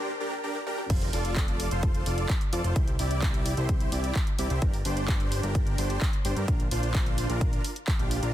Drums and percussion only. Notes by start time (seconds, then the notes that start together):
0.55 high tom
0.67 mid tom
0.78 mid tom
0.90 kick, closed hi-hat, crash
1.01 open hi-hat
1.13 open hi-hat
1.25 closed hi-hat
1.36 kick, clap, closed hi-hat
1.48 closed hi-hat
1.60 open hi-hat
1.71 closed hi-hat
1.83 kick, closed hi-hat
1.95 closed hi-hat
2.06 open hi-hat
2.18 closed hi-hat
2.29 kick, clap, closed hi-hat
2.41 closed hi-hat
2.53 open hi-hat
2.64 closed hi-hat
2.76 kick, closed hi-hat
2.88 closed hi-hat
2.99 open hi-hat
3.11 closed hi-hat
3.22 kick, clap, closed hi-hat
3.34 closed hi-hat
3.46 open hi-hat
3.57 closed hi-hat
3.69 kick, closed hi-hat
3.80 closed hi-hat
3.92 open hi-hat
4.04 closed hi-hat
4.15 kick, clap, closed hi-hat
4.27 closed hi-hat
4.39 open hi-hat
4.50 closed hi-hat
4.62 kick, closed hi-hat
4.74 open hi-hat
4.85 open hi-hat
4.97 closed hi-hat
5.08 kick, clap, closed hi-hat
5.20 closed hi-hat
5.32 open hi-hat
5.43 closed hi-hat
5.55 kick, closed hi-hat
5.67 closed hi-hat
5.78 open hi-hat
5.90 closed hi-hat
6.02 kick, clap, closed hi-hat
6.13 closed hi-hat
6.25 open hi-hat
6.37 closed hi-hat
6.48 kick, closed hi-hat
6.60 closed hi-hat
6.71 open hi-hat
6.83 closed hi-hat
6.95 kick, clap, closed hi-hat
7.06 closed hi-hat
7.18 open hi-hat
7.30 closed hi-hat
7.41 kick, closed hi-hat
7.53 closed hi-hat
7.64 open hi-hat
7.76 closed hi-hat
7.88 kick, clap, closed hi-hat
7.99 closed hi-hat
8.11 open hi-hat
8.23 closed hi-hat